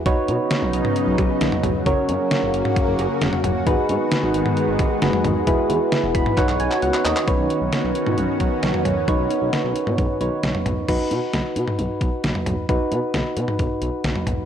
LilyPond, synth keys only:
\new Staff \with { instrumentName = "Synth keys" } { \time 4/4 \key b \major \tempo 4 = 133 << { r1 | r1 | r1 | r4. b''8 fis''8 gis''8 fis''8 dis''8 |
r1 | r1 | r1 | r1 | } \\ { <dis' fis' b' cis''>1 | <cis' fis' ais' cis''>1 | <dis' fis' gis' b'>2. <dis' fis' gis' b'>4 | <e' fis' gis' b'>2 <dis' fis' b' cis''>2 |
<dis' b' cis''>1 | <dis' b' cis''>2~ <dis' b' cis''>8 <dis' b' cis''>4. | <dis' fis' b'>1 | <dis' fis' b'>1 | } >> }